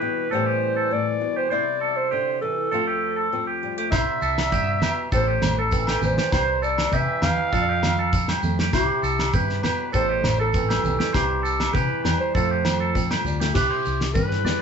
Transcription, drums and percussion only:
3.92 kick, snare, low agogo, shekere
4.22 shekere
4.38 snare, low agogo
4.52 kick, low conga, shekere
4.82 snare, high conga, low conga, low agogo, shekere
5.12 kick, shekere
5.42 snare, high conga, low conga, low agogo, shekere
5.72 kick, shekere
5.87 snare, low agogo
6.02 low conga, shekere
6.17 snare, high conga
6.32 kick, snare, low agogo, shekere
6.63 shekere
6.78 snare, low agogo
6.92 kick, low conga, shekere
7.22 snare, high conga, low conga, low agogo, shekere
7.53 kick, shekere
7.83 snare, high conga, low conga, low agogo, shekere
8.13 kick, shekere
8.28 snare, high conga, low agogo
8.42 low conga, shekere
8.59 snare, high conga
8.73 kick, snare, low agogo, shekere
9.04 shekere
9.19 snare, low agogo
9.33 kick, low conga, shekere
9.50 snare
9.63 snare, high conga, low conga, low agogo, shekere
9.94 kick, shekere
10.24 snare, high conga, low conga, low agogo, shekere
10.54 kick, shekere
10.70 snare, high conga, low agogo
10.85 low conga, shekere
11.00 snare, high conga
11.14 kick, snare, low agogo, shekere
11.45 shekere
11.60 snare, low agogo
11.74 kick, low conga, shekere
12.05 snare, high conga, low conga, low agogo, shekere
12.35 kick, shekere
12.65 snare, low conga, low agogo, shekere
12.95 kick, shekere
13.11 snare, high conga, low agogo
13.25 low conga, shekere
13.41 snare, high conga
13.55 kick, snare, crash, shekere
13.85 shekere
14.01 snare
14.15 kick, low conga, shekere
14.31 snare
14.45 snare, high conga, low conga, shekere

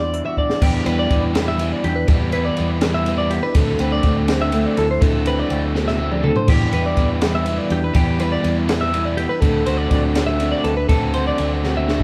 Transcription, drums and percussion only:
0.14 closed hi-hat
0.37 kick
0.50 snare
0.62 kick, crash
0.86 ride
1.10 kick, ride
1.35 snare, ride
1.59 ride
1.84 ride
2.08 kick, ride
2.32 ride
2.57 ride
2.81 snare, ride
3.06 ride
3.30 ride
3.55 kick, ride
3.79 ride
4.03 kick, ride
4.28 snare, ride
4.52 ride
4.77 ride
5.02 kick, ride
5.26 ride
5.50 ride
5.75 snare
5.88 snare
6.12 mid tom
6.24 mid tom
6.36 floor tom
6.48 kick, crash
6.73 ride
6.97 kick, ride
7.21 snare, ride
7.46 ride
7.70 ride
7.94 kick, ride
8.20 ride
8.44 ride
8.69 snare, ride
8.94 ride
9.18 ride
9.42 kick, ride
9.66 ride
9.91 kick, ride
10.15 snare, ride
10.40 ride
10.64 ride
10.89 kick, ride
11.14 ride
11.38 ride
11.64 snare
11.88 snare
12.00 kick

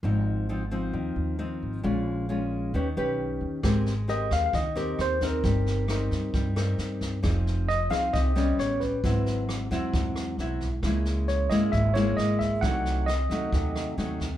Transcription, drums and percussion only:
3.63 kick, cross-stick, snare
3.86 snare
4.09 snare
4.31 kick, cross-stick, snare
4.53 kick, snare
4.76 snare
4.99 cross-stick, snare
5.21 kick, snare
5.44 kick, snare
5.66 snare
5.88 cross-stick, snare
6.11 kick, snare
6.34 kick, snare
6.56 cross-stick, snare
6.78 snare
7.01 kick, snare
7.23 kick, cross-stick, snare
7.47 snare
7.69 snare
7.91 kick, cross-stick, snare
8.14 kick, snare
8.36 snare
8.59 cross-stick, snare
8.81 kick, snare
9.04 kick, snare
9.26 snare
9.49 cross-stick, snare
9.71 kick, snare
9.93 kick, snare
10.16 cross-stick, snare
10.39 snare
10.61 kick, snare
10.83 kick, cross-stick, snare
11.05 snare
11.28 snare
11.50 kick, cross-stick, snare
11.73 kick, snare
11.96 snare
12.18 cross-stick, snare
12.40 kick, snare
12.63 kick, snare
12.86 snare
13.08 cross-stick, snare
13.30 kick, snare
13.53 kick, snare
13.76 cross-stick, snare
13.98 snare
14.20 kick, snare

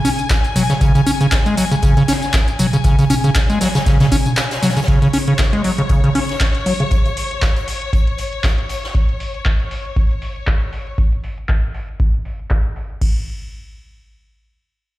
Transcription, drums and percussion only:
0.05 closed hi-hat, open hi-hat, tambourine
0.19 closed hi-hat, tambourine
0.30 kick, snare, clap, closed hi-hat, tambourine
0.44 closed hi-hat, tambourine
0.56 closed hi-hat, open hi-hat, mid tom, tambourine
0.70 snare, closed hi-hat, tambourine
0.81 kick, closed hi-hat, tambourine
0.95 closed hi-hat, tambourine
1.06 closed hi-hat, open hi-hat, tambourine
1.21 closed hi-hat, tambourine
1.32 kick, snare, clap, closed hi-hat, tambourine
1.46 closed hi-hat, tambourine
1.57 closed hi-hat, open hi-hat, tambourine
1.71 closed hi-hat, tambourine
1.82 kick, closed hi-hat, tambourine
1.97 closed hi-hat, tambourine
2.08 snare, closed hi-hat, open hi-hat, tambourine
2.22 snare, closed hi-hat, tambourine
2.33 kick, snare, clap, closed hi-hat, tambourine
2.48 closed hi-hat, tambourine
2.59 closed hi-hat, open hi-hat, mid tom, tambourine
2.73 closed hi-hat, tambourine
2.84 kick, closed hi-hat, tambourine
2.99 closed hi-hat, tambourine
3.10 closed hi-hat, open hi-hat, mid tom, tambourine
3.24 closed hi-hat, tambourine
3.35 kick, snare, clap, closed hi-hat, tambourine
3.50 closed hi-hat, tambourine
3.61 snare, closed hi-hat, open hi-hat, tambourine
3.75 snare, closed hi-hat, tambourine
3.86 kick, snare, closed hi-hat, tambourine
4.00 snare, closed hi-hat, mid tom, tambourine
4.12 kick, closed hi-hat, open hi-hat, tambourine
4.26 closed hi-hat, mid tom, tambourine
4.37 snare, clap, closed hi-hat, tambourine
4.51 snare, closed hi-hat, tambourine
4.62 snare, closed hi-hat, open hi-hat, mid tom, tambourine
4.69 snare, closed hi-hat
4.77 closed hi-hat, tambourine
4.82 snare, closed hi-hat
4.88 kick, closed hi-hat
5.02 closed hi-hat
5.13 closed hi-hat, open hi-hat
5.28 closed hi-hat
5.39 kick, snare, clap, closed hi-hat
5.53 closed hi-hat
5.64 closed hi-hat, open hi-hat
5.78 closed hi-hat
5.89 kick, closed hi-hat
6.04 closed hi-hat
6.15 open hi-hat
6.29 snare, closed hi-hat
6.40 kick, snare, clap, closed hi-hat
6.55 closed hi-hat
6.66 closed hi-hat, open hi-hat
6.80 closed hi-hat
6.91 kick, closed hi-hat
7.06 closed hi-hat
7.17 closed hi-hat, open hi-hat
7.31 closed hi-hat
7.42 kick, snare, clap, closed hi-hat
7.56 closed hi-hat
7.68 closed hi-hat, open hi-hat
7.82 closed hi-hat
7.93 kick, closed hi-hat
8.07 closed hi-hat
8.18 closed hi-hat, open hi-hat
8.33 closed hi-hat
8.44 kick, snare, clap, closed hi-hat
8.58 closed hi-hat
8.69 closed hi-hat, open hi-hat
8.83 snare, closed hi-hat
8.95 kick, closed hi-hat
9.09 closed hi-hat
9.20 open hi-hat
9.34 closed hi-hat
9.45 kick, clap, closed hi-hat
9.60 closed hi-hat
9.71 open hi-hat
9.85 closed hi-hat
9.96 kick, closed hi-hat
10.11 closed hi-hat
10.22 open hi-hat
10.36 closed hi-hat
10.47 kick, clap, closed hi-hat
10.61 closed hi-hat
10.73 open hi-hat
10.87 closed hi-hat
10.98 kick, closed hi-hat
11.12 closed hi-hat
11.24 open hi-hat
11.38 closed hi-hat
11.49 kick, clap, closed hi-hat
11.63 closed hi-hat
11.74 open hi-hat
11.88 closed hi-hat
12.00 kick, closed hi-hat
12.14 closed hi-hat
12.25 open hi-hat
12.39 closed hi-hat
12.50 kick, clap, closed hi-hat
12.65 closed hi-hat
12.76 open hi-hat
12.90 closed hi-hat
13.02 kick, crash

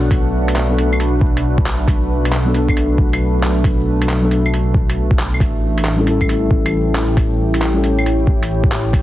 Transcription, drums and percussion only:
0.11 kick, closed hi-hat
0.48 closed hi-hat
0.56 clap, closed hi-hat
0.78 closed hi-hat
0.93 claves
1.00 closed hi-hat
1.21 kick
1.37 closed hi-hat
1.58 kick
1.66 clap, closed hi-hat
1.88 kick, closed hi-hat
2.25 closed hi-hat
2.32 clap, closed hi-hat
2.54 closed hi-hat
2.69 kick, claves
2.77 closed hi-hat
2.98 kick
3.13 closed hi-hat, claves
3.43 clap, closed hi-hat
3.64 kick, closed hi-hat
4.02 closed hi-hat
4.09 clap, closed hi-hat
4.31 closed hi-hat
4.46 claves
4.54 closed hi-hat
4.74 kick
4.90 closed hi-hat
5.11 kick
5.19 clap, closed hi-hat
5.34 claves
5.40 kick, closed hi-hat
5.78 closed hi-hat
5.85 clap, closed hi-hat
6.07 closed hi-hat
6.21 kick, claves
6.29 closed hi-hat
6.51 kick
6.66 closed hi-hat, claves
6.95 clap, closed hi-hat
7.17 kick, closed hi-hat
7.54 closed hi-hat
7.62 clap, closed hi-hat
7.84 closed hi-hat
7.99 claves
8.06 closed hi-hat
8.27 kick
8.43 closed hi-hat
8.64 kick
8.72 clap, closed hi-hat
8.93 kick, closed hi-hat

